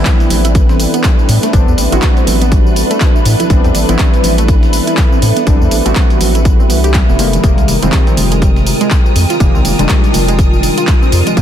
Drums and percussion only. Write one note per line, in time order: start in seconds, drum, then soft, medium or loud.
0.05 kick loud
0.05 snare loud
0.05 clap loud
0.05 closed hi-hat medium
0.05 tambourine soft
0.20 closed hi-hat soft
0.20 tambourine soft
0.30 closed hi-hat medium
0.30 open hi-hat loud
0.30 tambourine medium
0.30 high conga loud
0.30 low conga medium
0.45 closed hi-hat soft
0.45 closed hi-hat medium
0.45 tambourine soft
0.55 kick loud
0.55 closed hi-hat medium
0.55 tambourine soft
0.69 snare soft
0.69 tambourine soft
0.80 closed hi-hat medium
0.80 open hi-hat loud
0.80 tambourine medium
0.94 closed hi-hat medium
0.94 tambourine soft
1.04 kick loud
1.04 snare loud
1.04 clap loud
1.04 closed hi-hat medium
1.04 tambourine soft
1.19 tambourine soft
1.29 closed hi-hat medium
1.29 open hi-hat loud
1.29 tambourine medium
1.43 snare soft
1.43 closed hi-hat medium
1.43 tambourine soft
1.53 kick loud
1.53 closed hi-hat medium
1.53 tambourine soft
1.68 tambourine soft
1.78 closed hi-hat medium
1.78 open hi-hat loud
1.78 tambourine medium
1.78 high conga medium
1.92 closed hi-hat medium
1.92 tambourine soft
2.02 kick loud
2.02 snare loud
2.02 clap loud
2.02 closed hi-hat medium
2.02 tambourine soft
2.17 closed hi-hat soft
2.17 tambourine soft
2.27 closed hi-hat medium
2.27 open hi-hat loud
2.27 tambourine medium
2.27 high conga loud
2.27 low conga loud
2.42 closed hi-hat medium
2.42 tambourine soft
2.52 kick loud
2.52 closed hi-hat medium
2.52 tambourine soft
2.67 tambourine soft
2.76 closed hi-hat medium
2.76 open hi-hat loud
2.76 tambourine medium
2.91 closed hi-hat medium
2.91 tambourine soft
3.00 kick loud
3.00 snare loud
3.00 clap loud
3.00 closed hi-hat medium
3.00 tambourine soft
3.16 tambourine soft
3.25 closed hi-hat medium
3.25 open hi-hat loud
3.25 tambourine medium
3.40 closed hi-hat medium
3.40 tambourine soft
3.40 low conga medium
3.50 kick loud
3.50 closed hi-hat medium
3.50 tambourine soft
3.64 closed hi-hat soft
3.64 tambourine soft
3.74 closed hi-hat medium
3.74 open hi-hat loud
3.74 tambourine medium
3.74 high conga medium
3.89 closed hi-hat medium
3.89 tambourine soft
3.89 low conga medium
3.99 kick loud
3.99 snare loud
3.99 clap loud
3.99 closed hi-hat medium
3.99 tambourine soft
4.14 closed hi-hat soft
4.14 tambourine soft
4.23 closed hi-hat medium
4.23 open hi-hat loud
4.23 tambourine medium
4.23 high conga loud
4.23 low conga loud
4.38 closed hi-hat soft
4.38 closed hi-hat medium
4.38 tambourine soft
4.48 kick loud
4.48 closed hi-hat medium
4.48 tambourine soft
4.63 snare soft
4.63 tambourine soft
4.73 closed hi-hat medium
4.73 open hi-hat loud
4.73 tambourine medium
4.87 closed hi-hat medium
4.87 tambourine soft
4.97 kick loud
4.97 snare loud
4.97 clap loud
4.97 closed hi-hat medium
4.97 tambourine soft
5.12 tambourine soft
5.22 closed hi-hat medium
5.22 open hi-hat loud
5.22 tambourine medium
5.37 snare soft
5.37 closed hi-hat medium
5.37 tambourine soft
5.47 kick loud
5.47 closed hi-hat soft
5.47 closed hi-hat medium
5.47 tambourine soft
5.62 tambourine soft
5.71 closed hi-hat medium
5.71 open hi-hat loud
5.71 tambourine medium
5.71 high conga medium
5.86 closed hi-hat medium
5.86 tambourine soft
5.95 kick loud
5.95 snare loud
5.95 clap loud
5.95 closed hi-hat soft
5.95 closed hi-hat medium
5.95 tambourine soft
6.10 closed hi-hat soft
6.10 tambourine soft
6.20 closed hi-hat medium
6.20 open hi-hat loud
6.20 tambourine medium
6.20 high conga medium
6.20 low conga medium
6.35 closed hi-hat medium
6.35 tambourine soft
6.45 kick loud
6.45 closed hi-hat medium
6.45 tambourine soft
6.60 tambourine soft
6.70 closed hi-hat medium
6.70 open hi-hat loud
6.70 tambourine medium
6.84 closed hi-hat medium
6.84 tambourine soft
6.94 kick loud
6.94 snare loud
6.94 clap loud
6.94 closed hi-hat medium
6.94 closed hi-hat soft
6.94 tambourine soft
7.09 tambourine soft
7.19 closed hi-hat medium
7.19 open hi-hat loud
7.19 tambourine medium
7.33 closed hi-hat medium
7.33 tambourine soft
7.33 low conga loud
7.44 kick loud
7.44 closed hi-hat medium
7.44 closed hi-hat soft
7.44 tambourine soft
7.58 closed hi-hat soft
7.58 tambourine soft
7.68 closed hi-hat medium
7.68 open hi-hat loud
7.68 tambourine medium
7.68 high conga medium
7.83 closed hi-hat medium
7.83 tambourine soft
7.83 low conga medium
7.92 kick loud
7.92 snare loud
7.92 clap loud
7.92 closed hi-hat medium
7.92 tambourine soft
8.07 closed hi-hat soft
8.07 tambourine soft
8.17 closed hi-hat medium
8.17 open hi-hat loud
8.17 tambourine medium
8.17 high conga loud
8.17 low conga medium
8.32 closed hi-hat soft
8.32 closed hi-hat medium
8.32 tambourine soft
8.42 kick loud
8.42 closed hi-hat medium
8.42 closed hi-hat soft
8.42 tambourine soft
8.56 snare soft
8.56 tambourine soft
8.67 closed hi-hat medium
8.67 open hi-hat loud
8.67 tambourine medium
8.81 closed hi-hat medium
8.81 tambourine soft
8.91 kick loud
8.91 snare loud
8.91 clap loud
8.91 closed hi-hat medium
8.91 closed hi-hat soft
8.91 tambourine soft
9.06 tambourine soft
9.16 closed hi-hat medium
9.16 open hi-hat loud
9.16 tambourine medium
9.30 snare soft
9.30 closed hi-hat medium
9.30 tambourine soft
9.40 kick loud
9.40 closed hi-hat medium
9.40 tambourine soft
9.55 tambourine soft
9.65 closed hi-hat medium
9.65 open hi-hat loud
9.65 tambourine medium
9.65 high conga medium
9.79 closed hi-hat medium
9.79 tambourine soft
9.89 kick loud
9.89 snare loud
9.89 clap loud
9.89 closed hi-hat medium
9.89 tambourine soft
10.04 closed hi-hat soft
10.04 tambourine soft
10.13 closed hi-hat medium
10.13 open hi-hat loud
10.13 tambourine medium
10.13 high conga medium
10.13 low conga medium
10.28 closed hi-hat medium
10.28 tambourine soft
10.39 kick loud
10.39 closed hi-hat medium
10.39 tambourine soft
10.54 tambourine soft
10.63 closed hi-hat medium
10.63 open hi-hat loud
10.63 tambourine medium
10.78 closed hi-hat medium
10.78 tambourine soft
10.87 kick loud
10.87 snare loud
10.87 clap loud
10.87 closed hi-hat medium
10.87 tambourine soft
11.03 tambourine soft
11.12 closed hi-hat medium
11.12 open hi-hat loud
11.12 tambourine medium
11.26 closed hi-hat medium
11.26 tambourine soft
11.26 low conga medium
11.37 kick loud
11.37 closed hi-hat medium
11.37 tambourine soft